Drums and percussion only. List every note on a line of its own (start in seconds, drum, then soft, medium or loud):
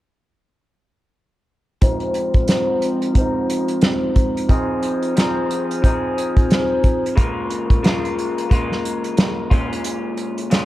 1.81 kick medium
1.81 closed hi-hat medium
2.00 closed hi-hat soft
2.14 closed hi-hat soft
2.34 kick medium
2.34 closed hi-hat soft
2.48 snare medium
2.48 closed hi-hat medium
2.82 closed hi-hat medium
3.02 closed hi-hat soft
3.15 kick medium
3.15 closed hi-hat medium
3.50 closed hi-hat medium
3.68 closed hi-hat soft
3.81 snare loud
3.81 closed hi-hat medium
4.16 kick medium
4.16 closed hi-hat medium
4.37 closed hi-hat soft
4.49 kick medium
4.49 closed hi-hat medium
4.83 closed hi-hat medium
5.03 closed hi-hat soft
5.17 snare medium
5.17 closed hi-hat medium
5.51 closed hi-hat medium
5.71 closed hi-hat soft
5.84 kick medium
5.84 closed hi-hat medium
6.18 closed hi-hat medium
6.36 kick medium
6.36 closed hi-hat soft
6.50 snare loud
6.50 closed hi-hat medium
6.84 kick medium
6.84 closed hi-hat medium
7.06 closed hi-hat medium
7.17 kick medium
7.17 closed hi-hat medium
7.50 closed hi-hat medium
7.70 kick medium
7.70 closed hi-hat soft
7.84 snare medium
7.84 closed hi-hat medium
8.05 closed hi-hat soft
8.18 closed hi-hat medium
8.38 closed hi-hat soft
8.51 kick medium
8.51 closed hi-hat medium
8.72 snare soft
8.85 closed hi-hat medium
9.04 closed hi-hat soft
9.17 snare loud
9.17 closed hi-hat medium
9.51 kick medium
9.51 closed hi-hat medium
9.73 closed hi-hat soft
9.84 closed hi-hat medium
10.17 closed hi-hat medium
10.38 closed hi-hat soft
10.51 snare medium
10.51 closed hi-hat medium